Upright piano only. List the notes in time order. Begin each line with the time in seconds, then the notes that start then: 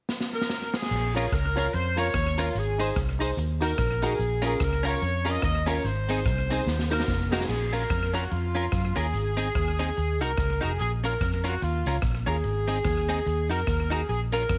1.14 F4 A#4 C#5
1.55 F4 A#4 C#5
1.96 F4 A#4 C#5
2.38 F4 A#4 C#5
2.78 D#4 G#4 C5
3.19 D#4 G#4 C5
3.37 F#4 A#4
3.61 D#4 F#4 A#4
4.02 D#4 F#4 A#4
4.43 C#4 F4 A#4
4.84 C#4 F4 A#4
5.02 F4 A#4
5.25 C#4 F4 A#4
5.67 C#4 F4 A#4
6.08 C4 D#4 G#4
6.49 C4 D#4 G#4
6.67 D#4 F#4
6.90 A#3 D#4 F#4
7.31 A#3 D#4 F#4